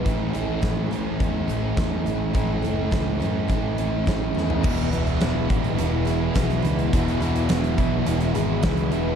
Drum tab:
CC |----------------|----------------|x---------------|----------------|
HH |x-x-x-x-x-x-x-x-|x-x-x-x-x-x-x---|--xxx-xxx-x-xxxx|xxxxxxx-xxx-xxx-|
SD |----o-------o---|----o-------o-o-|----o-------o-o-|----o-------o---|
FT |----------------|---------------o|----------------|----------------|
BD |o---o---o---o---|o---o---o---o---|o-----o-----o---|o-----o-----o---|